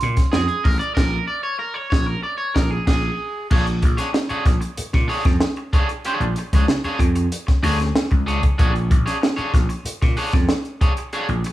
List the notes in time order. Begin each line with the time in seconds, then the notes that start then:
0.01 A#2, closed hi-hat
0.17 kick, snare, closed hi-hat
0.32 F2 G#4, snare
0.48 G#4, closed hi-hat
0.64 A1 A#4, kick, open hi-hat
0.79 D5, closed hi-hat
0.95 A#1 A#4, kick, snare, crash
1.28 D5
1.43 C#5
1.59 A#4
1.74 C#5
1.90 A#1 C#5, kick, snare
2.06 A#4
2.23 D5
2.38 C#5
2.54 A#1 A#4, kick, snare
2.71 G#4
2.87 A#1 G#4, kick, snare, crash
3.51 A#1 D4 G#4 C#5, kick, crash
3.66 muted clean electric guitar stroke, closed hi-hat
3.82 A#1, muted clean electric guitar stroke, kick, closed hi-hat
3.97 D4 G#4 C#5, snare, closed hi-hat
4.13 muted clean electric guitar stroke, snare
4.29 D4 G#4 C#5, muted slap bass stroke, closed hi-hat
4.45 A#1, muted clean electric guitar stroke, kick, snare, closed hi-hat
4.61 muted clean electric guitar stroke, closed hi-hat
4.77 muted slap bass stroke, closed hi-hat
4.93 A#2, muted clean electric guitar stroke, kick, snare, closed hi-hat
5.08 D4 G#4 C#5, open hi-hat
5.25 F2, muted clean electric guitar stroke, kick, snare, closed hi-hat
5.41 muted clean electric guitar stroke, snare
5.56 muted clean electric guitar stroke, closed hi-hat
5.73 D4 G#4 C#5, kick, closed hi-hat
5.89 muted clean electric guitar stroke, closed hi-hat
6.05 D4 G#4 C#5, closed hi-hat
6.20 A#1, muted clean electric guitar stroke, closed hi-hat
6.36 muted clean electric guitar stroke, closed hi-hat
6.53 C#2 D4 G#4 C#5, kick, snare, closed hi-hat
6.68 muted clean electric guitar stroke, snare
6.84 D4 G#4 C#5, muted slap bass stroke, closed hi-hat
6.99 F2, muted clean electric guitar stroke, kick, closed hi-hat
7.16 muted clean electric guitar stroke, closed hi-hat
7.32 closed hi-hat
7.47 muted clean electric guitar stroke, kick, snare, closed hi-hat
7.63 D2 D4 G#4 C#5, open hi-hat
7.80 muted clean electric guitar stroke, snare, closed hi-hat
7.95 muted slap bass stroke, snare
8.11 C#2, muted clean electric guitar stroke, kick, closed hi-hat
8.26 D4 G#4 C#5, closed hi-hat
8.42 muted clean electric guitar stroke, kick, closed hi-hat
8.58 A#1 D4 G#4 C#5, kick, closed hi-hat
8.74 muted clean electric guitar stroke, closed hi-hat
8.91 A#1, muted clean electric guitar stroke, kick, closed hi-hat
9.06 D4 G#4 C#5, snare, closed hi-hat
9.22 muted clean electric guitar stroke, snare
9.36 D4 G#4 C#5, muted slap bass stroke, closed hi-hat
9.53 A#1, muted clean electric guitar stroke, kick, snare, closed hi-hat
9.69 muted clean electric guitar stroke, closed hi-hat
9.85 muted slap bass stroke, closed hi-hat
10.02 A#2, muted clean electric guitar stroke, kick, snare, closed hi-hat
10.17 D4 G#4 C#5, open hi-hat
10.33 F2, muted clean electric guitar stroke, kick, snare, closed hi-hat
10.49 muted clean electric guitar stroke, snare
10.65 closed hi-hat
10.81 D4 G#4 C#5, kick, closed hi-hat
10.97 muted clean electric guitar stroke, closed hi-hat
11.13 D4 G#4 C#5, closed hi-hat
11.29 A#1, muted clean electric guitar stroke, closed hi-hat
11.44 muted clean electric guitar stroke, closed hi-hat